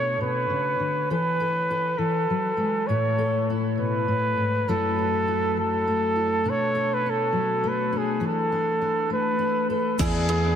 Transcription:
0.00 0.19 B2 medium
0.00 1.11 A3 medium
0.00 1.08 D4 soft
0.00 1.10 A4 medium
0.00 0.21 C#5 loud
0.21 0.49 B2 medium
0.21 1.07 B4 medium
0.50 0.79 C#3 medium
0.80 1.10 D3 medium
1.10 1.98 E3 medium
1.10 1.40 A4 medium
1.10 2.00 B4 medium
1.40 1.70 A4 medium
1.70 3.18 A4 medium
1.98 2.29 E3 medium
1.98 2.88 A4 medium
2.30 2.57 F#3 medium
2.57 2.88 G#3 medium
2.87 4.07 A2 medium
2.87 3.49 E4 medium
2.87 3.50 C#5 medium
3.18 6.47 A4 medium
3.50 4.64 E4 soft
3.78 4.08 B2 medium
3.78 4.70 B4 medium
4.08 4.37 A2 medium
4.38 4.67 G#2 medium
4.68 6.45 F#2 medium
4.68 5.57 F#3 medium
4.68 5.87 A3 medium
4.68 4.97 E4 medium
4.68 5.57 A4 medium
4.98 5.27 E4 soft
5.28 6.15 E4 soft
5.57 6.42 F#3 medium
5.57 6.51 A4 medium
5.87 7.62 A3 medium
6.16 6.42 E4 medium
6.44 8.22 B2 medium
6.44 7.06 D4 medium
6.50 6.95 C#5 medium
6.75 8.19 A4 medium
6.94 7.11 B4 medium
7.06 7.92 D4 soft
7.06 7.69 A4 medium
7.32 8.18 F#3 medium
7.64 9.09 A3 soft
7.68 7.99 B4 medium
7.92 8.20 D4 soft
7.97 8.25 G#4 medium
8.20 9.98 E3 medium
8.20 8.51 D4 medium
8.27 9.09 A4 medium
8.52 8.80 D4 soft
8.81 9.38 D4 soft
9.10 9.99 A3 medium
9.10 9.67 B4 medium
9.39 9.95 D4 soft
9.70 9.96 A4 medium
9.70 9.98 B4 medium
9.99 10.55 E2 medium
9.99 10.55 E3 medium
9.99 10.27 E3 medium
9.99 10.27 B3 medium
9.99 10.29 D4 medium
9.99 10.55 E4 medium
9.99 10.55 G#4 medium
9.99 10.29 G#4 medium
9.99 kick loud
9.99 closed hi-hat medium
9.99 crash medium
9.99 shaker medium
10.28 10.43 E3 medium
10.28 10.43 B3 medium
10.28 10.43 D4 medium
10.28 10.55 G#4 medium
10.28 10.41 G#4 medium
10.28 closed hi-hat medium
10.43 10.55 B3 soft
10.43 10.55 D4 soft
10.43 10.55 G#4 soft

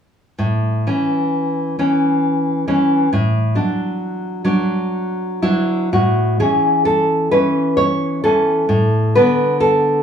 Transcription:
0.39 0.85 A2 soft
0.87 1.78 E3 soft
0.87 1.78 C#4 soft
1.79 2.66 E3 soft
1.79 2.67 C#4 soft
2.68 3.07 E3 soft
2.68 3.08 C#4 soft
3.13 3.54 A2 medium
3.55 4.43 F#3 soft
3.55 4.44 D4 soft
4.45 5.42 F#3 soft
4.45 5.42 D4 soft
5.42 5.89 F#3 soft
5.42 5.89 D4 soft
5.42 5.91 E4 medium
5.93 6.38 A2 soft
5.93 6.38 F#4 soft
6.40 7.31 E3 soft
6.40 7.31 C#4 soft
6.40 6.84 G#4 medium
6.85 7.30 A4 medium
7.31 8.23 E3 soft
7.31 8.23 C#4 soft
7.31 7.76 B4 medium
7.77 8.21 C#5 medium
8.24 8.66 E3 soft
8.24 8.66 C#4 soft
8.24 9.12 A4 medium
8.69 9.14 A2 soft
9.15 10.03 D3 soft
9.15 10.03 B3 soft
9.15 9.59 B4 medium
9.60 10.03 A4 medium

